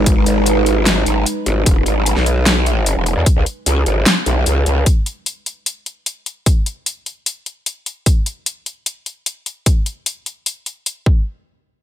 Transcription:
0.00 0.15 G#1 medium
0.00 1.63 G#3 medium
0.00 1.63 D#4 medium
0.00 1.63 B4 medium
0.06 kick loud
0.06 closed hi-hat medium
0.17 0.25 G#1 loud
0.26 1.05 G#1 loud
0.26 closed hi-hat medium
0.46 closed hi-hat medium
0.66 closed hi-hat medium
0.86 snare loud
0.86 closed hi-hat medium
1.06 1.25 G#1 medium
1.06 closed hi-hat medium
1.26 closed hi-hat medium
1.46 1.65 G#1 medium
1.46 closed hi-hat medium
1.66 1.85 E1 loud
1.66 kick loud
1.66 closed hi-hat medium
1.86 2.15 G#1 loud
1.86 closed hi-hat medium
2.06 closed hi-hat medium
2.16 2.95 B1 loud
2.16 snare soft
2.26 closed hi-hat medium
2.46 snare loud
2.46 closed hi-hat medium
2.66 closed hi-hat soft
2.86 closed hi-hat medium
2.96 3.15 E1 loud
3.06 closed hi-hat medium
3.16 3.25 E2 medium
3.26 kick loud
3.26 closed hi-hat medium
3.36 3.45 C#2 medium
3.46 closed hi-hat soft
3.66 3.85 C#2 loud
3.66 closed hi-hat medium
3.86 4.05 G#1 loud
3.86 closed hi-hat soft
4.06 snare loud
4.06 closed hi-hat medium
4.26 4.45 B1 medium
4.26 closed hi-hat soft
4.46 4.65 C#2 medium
4.46 closed hi-hat medium
4.66 4.85 C#2 medium
4.66 closed hi-hat soft
4.86 kick loud
4.86 closed hi-hat medium
5.06 closed hi-hat soft
5.26 closed hi-hat medium
5.46 closed hi-hat soft
5.66 closed hi-hat medium
5.86 closed hi-hat soft
6.06 closed hi-hat medium
6.26 closed hi-hat soft
6.46 kick loud
6.46 closed hi-hat medium
6.66 closed hi-hat soft
6.86 closed hi-hat medium
7.06 closed hi-hat soft
7.26 closed hi-hat medium
7.46 closed hi-hat soft
7.66 closed hi-hat medium
7.86 closed hi-hat soft
8.06 kick loud
8.06 closed hi-hat medium
8.26 closed hi-hat soft
8.46 closed hi-hat medium
8.66 closed hi-hat soft
8.86 closed hi-hat medium
9.06 closed hi-hat soft
9.26 closed hi-hat medium
9.46 closed hi-hat soft
9.66 kick loud
9.66 closed hi-hat medium
9.86 closed hi-hat medium
10.06 closed hi-hat medium
10.26 closed hi-hat soft
10.46 closed hi-hat medium
10.66 closed hi-hat soft
10.86 closed hi-hat medium
11.06 kick loud

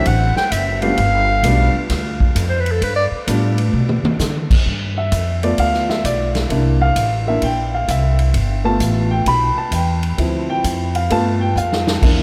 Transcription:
0.05 0.34 A1 medium
0.05 0.37 F#5 medium
0.05 kick soft
0.05 ride medium
0.36 0.53 G5 loud
0.36 muted upright bass stroke soft
0.36 snare soft
0.51 0.97 F#1 medium
0.51 0.81 E5 loud
0.51 kick soft
0.51 hi-hat pedal medium
0.51 ride medium
0.82 0.96 G3 medium
0.82 0.96 A3 medium
0.82 0.97 B3 medium
0.82 0.97 D4 medium
0.82 0.97 F4 medium
0.82 1.86 F5 loud
0.82 ride soft
0.97 1.43 G1 medium
0.97 kick soft
0.97 ride medium
1.43 1.72 B1 loud
1.43 1.72 G3 medium
1.43 1.72 A3 medium
1.43 1.72 B3 medium
1.43 1.72 D4 medium
1.43 1.72 F4 medium
1.43 kick soft
1.43 hi-hat pedal medium
1.43 ride medium
1.90 2.35 D2 medium
1.90 kick soft
1.90 snare soft
1.90 ride medium
2.20 kick medium
2.35 2.80 F2 loud
2.35 kick soft
2.35 hi-hat pedal medium
2.35 ride medium
2.49 2.62 C5 medium
2.60 2.73 B4 medium
2.66 ride soft
2.71 2.85 A4 medium
2.81 3.10 G2 medium
2.81 2.95 B4 loud
2.81 kick soft
2.81 ride medium
2.96 3.06 D5 loud
3.11 muted upright bass stroke soft
3.27 3.73 A2 loud
3.27 3.56 G3 medium
3.27 3.56 A3 medium
3.27 3.56 B3 medium
3.27 3.56 D4 medium
3.27 3.56 F4 medium
3.27 kick soft
3.27 hi-hat pedal medium
3.27 ride medium
3.58 ride medium
3.73 4.02 B2 medium
3.89 mid tom medium
4.03 muted upright bass stroke soft
4.03 mid tom medium
4.19 4.65 D3 medium
4.19 snare medium
4.19 hi-hat pedal medium
4.50 kick medium
4.50 crash medium
4.66 5.11 G2 medium
4.66 kick soft
4.98 5.40 E5 medium
5.12 5.57 F2 loud
5.12 kick soft
5.12 hi-hat pedal medium
5.12 ride medium
5.43 6.47 A3 soft
5.43 6.47 B3 soft
5.43 6.47 F4 medium
5.43 5.58 D5 medium
5.43 ride soft
5.58 6.03 D2 medium
5.58 5.89 F5 medium
5.58 kick soft
5.58 ride medium
5.74 snare soft
5.89 6.04 E5 medium
5.89 snare medium
6.04 6.49 B1 medium
6.04 6.48 D5 medium
6.04 kick soft
6.04 hi-hat pedal medium
6.04 ride medium
6.35 snare medium
6.35 ride soft
6.50 6.95 C2 medium
6.50 6.85 A#3 soft
6.50 6.85 D4 soft
6.50 6.86 E4 soft
6.50 kick soft
6.50 ride medium
6.82 7.24 F5 medium
6.96 7.41 A1 loud
6.96 kick soft
6.96 hi-hat pedal medium
6.96 ride medium
7.27 7.41 A#3 soft
7.27 7.41 D4 soft
7.27 7.41 E4 soft
7.27 7.43 E5 medium
7.42 7.87 A#1 medium
7.42 7.73 G5 medium
7.42 kick soft
7.42 ride medium
7.75 7.89 F5 medium
7.88 8.33 C2 medium
7.88 8.32 E5 medium
7.88 kick soft
7.88 hi-hat pedal medium
7.88 ride medium
8.19 ride medium
8.34 8.79 G1 medium
8.34 kick soft
8.34 ride medium
8.64 9.23 A3 medium
8.64 9.23 B3 soft
8.64 9.24 F4 medium
8.64 9.08 A5 medium
8.80 9.25 A1 loud
8.80 kick soft
8.80 hi-hat pedal medium
8.80 ride medium
9.11 9.26 G5 medium
9.26 9.55 B1 medium
9.26 9.57 B5 loud
9.26 kick soft
9.26 ride medium
9.56 9.72 A5 medium
9.56 muted upright bass stroke soft
9.71 10.17 E2 medium
9.71 10.16 G5 medium
9.71 kick soft
9.71 hi-hat pedal medium
9.71 ride medium
10.03 ride medium
10.18 10.63 D2 medium
10.18 11.06 F3 soft
10.18 11.07 C4 soft
10.18 11.07 E4 soft
10.18 kick soft
10.18 ride medium
10.50 10.92 G5 medium
10.64 11.09 F2 loud
10.64 kick soft
10.64 hi-hat pedal medium
10.64 ride medium
10.95 11.10 F5 medium
10.95 ride medium
11.10 11.55 G2 medium
11.10 11.45 A3 medium
11.10 11.46 B3 soft
11.10 11.46 F4 medium
11.10 11.41 A5 loud
11.10 kick soft
11.10 ride medium
11.41 11.56 G5 medium
11.55 12.01 F2 loud
11.55 12.00 F5 medium
11.55 hi-hat pedal medium
11.72 snare medium
11.87 snare medium
12.02 12.18 E2 medium
12.02 12.23 A#3 soft
12.02 12.23 D4 soft
12.02 12.23 E4 medium
12.02 kick medium
12.02 crash medium
12.17 12.23 C2 medium

